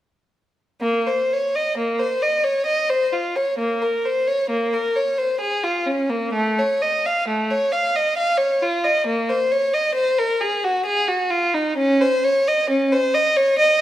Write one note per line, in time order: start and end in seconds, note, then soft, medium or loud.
0.81 1.05 A#3 soft
1.07 1.30 C5 soft
1.32 1.55 C#5 soft
1.56 1.77 D#5 soft
1.77 1.99 A#3 soft
1.99 2.22 C5 soft
2.22 2.44 D#5 soft
2.44 2.67 C#5 soft
2.66 2.89 D#5 soft
2.90 3.13 C5 soft
3.12 3.36 F4 soft
3.36 3.59 C#5 soft
3.58 3.81 A#3 soft
3.82 4.04 A#4 soft
4.05 4.28 C5 soft
4.27 4.50 C#5 soft
4.50 4.72 A#3 soft
4.73 4.95 A#4 soft
4.96 5.18 C#5 soft
5.17 5.40 C5 soft
5.40 5.63 G#4 soft
5.63 5.87 F4 soft
5.87 6.10 C#4 soft
6.10 6.34 A#3 soft
6.33 6.57 A3 soft
6.58 6.81 C#5 soft
6.82 7.04 D#5 soft
7.06 7.28 F5 soft
7.28 7.49 A3 soft
7.51 7.72 C#5 soft
7.72 7.94 F5 soft
7.96 8.17 D#5 soft
8.17 8.39 F5 soft
8.38 8.61 C#5 soft
8.62 8.84 F4 soft
8.84 9.06 D#5 soft
9.07 9.28 A#3 soft
9.29 9.51 C5 soft
9.52 9.73 C#5 soft
9.74 9.95 D#5 soft
9.95 10.16 C5 soft
10.18 10.40 A#4 soft
10.41 10.63 G#4 soft
10.64 10.85 F#4 soft
10.86 11.07 G#4 soft
11.08 11.30 F#4 soft
11.30 11.53 F4 soft
11.54 11.78 D#4 soft
11.78 12.01 C#4 medium
12.01 12.24 C5 medium
12.24 12.47 C#5 medium
12.48 12.70 D#5 soft
12.70 12.92 C#4 medium
12.92 13.15 C5 medium
13.14 13.37 D#5 medium
13.36 13.59 C#5 medium
13.59 13.81 D#5 medium